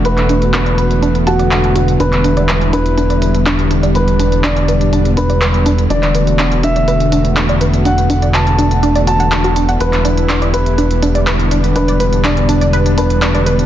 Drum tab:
HH |xxxxxxxxxxxxxxxx|xxxxxxxxxxxxxxxx|xxxxxxxxxxxxxxxx|xxxxxxxxxxxxxxxx|
CP |-x--x-------x---|-x--x-------x---|----x-------x---|-x--x-------x---|

HH |xxxxxxxxxxxxxxxx|xxxxxxxxxxxxxxxx|xxxxxxxxxxxxxxxx|
CP |----x-------x---|-x--x-------x---|----x-------x---|